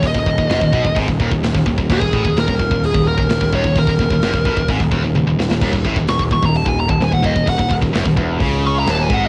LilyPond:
<<
  \new Staff \with { instrumentName = "Lead electric guitar" } { \time 4/4 \key ees \minor \tempo 4 = 129 ees''2 r2 | aes'4 bes'4 aes'8 bes'4 des''8 | bes'2 r2 | r4 des'''16 r16 des'''16 bes''16 a''16 aes''16 bes''16 a''16 aes''16 ges''16 ees''8 |
ges''8 r2 des'''16 bes''16 a''16 aes''16 ges''16 r16 | }
  \new Staff \with { instrumentName = "Distorted electric guitar" } { \clef bass \time 4/4 \key ees \minor ees,16 ees,16 ees,16 ees,16 ges,16 ees,16 ces16 ees,16 aes,16 ees,16 ees,16 ees,16 ees,16 ees,16 ees,16 ees,16 | ees,16 ees,16 a,16 ees,16 ees,16 ees,16 ees,16 ees,8 ees,8 ees,16 ees,16 ees,16 ees,16 ees,16 | ees,16 ees,16 ees,16 ees,16 ges,16 ees,16 ces16 ees,16 aes,16 ees,16 ees,16 ees,16 ees,16 ees,16 ees,16 ees,16 | ees,16 ees,16 a,16 ees,16 ees,16 ees,16 ees,16 ees,8 ees,8 ees,16 ees,16 ees,16 ees,16 ees,16 |
ees,16 ees,16 ees,16 ees,16 ges,16 ees,16 fes,8 des4 ees,8 aes,8 | }
  \new Staff \with { instrumentName = "Picked electric bass" } { \clef bass \time 4/4 \key ees \minor ees,,16 ees,,16 ees,,16 ees,,16 ges,,16 ees,,16 ces,16 ees,,16 aes,,16 ees,,16 ees,,16 ees,,16 ees,,16 ees,,16 ees,,16 ees,,16 | ees,,16 ees,,16 a,,16 ees,,16 ees,,16 ees,,16 ees,,16 ees,,8 ees,,8 ees,,16 ees,,16 ees,,16 ees,,16 ees,,16 | ees,,16 ees,,16 ees,,16 ees,,16 ges,,16 ees,,16 ces,16 ees,,16 aes,,16 ees,,16 ees,,16 ees,,16 ees,,16 ees,,16 ees,,16 ees,,16 | ees,,16 ees,,16 a,,16 ees,,16 ees,,16 ees,,16 ees,,16 ees,,8 ees,,8 ees,,16 ees,,16 ees,,16 ees,,16 ees,,16 |
ees,,16 ees,,16 ees,,16 ees,,16 ges,,16 ees,,16 fes,,8 des,4 ees,,8 aes,,8 | }
  \new DrumStaff \with { instrumentName = "Drums" } \drummode { \time 4/4 <hho bd>16 bd16 bd16 bd16 <hho sn>16 bd16 bd16 bd16 <hho bd>16 bd16 bd16 bd16 <hho sn>16 <bd sn>16 bd16 bd16 | <cymc bd>16 bd16 bd16 bd16 <hho sn>16 bd16 bd16 bd16 hho16 bd8 bd16 <hho sn>16 <bd sn>16 bd16 bd16 | <hho bd>16 bd16 bd16 bd16 <hho sn>16 bd16 bd16 bd16 <hho bd>16 bd16 bd8 tommh8 sn16 sn16 | <cymc bd>16 bd16 bd16 bd16 <hho sn>16 bd16 bd16 bd16 hho16 bd8 bd16 <hho sn>16 bd16 bd16 bd16 |
<hho bd>16 bd16 bd16 bd16 <hho sn>16 bd16 bd8 <hho bd>4 <hho sn>8 bd8 | }
>>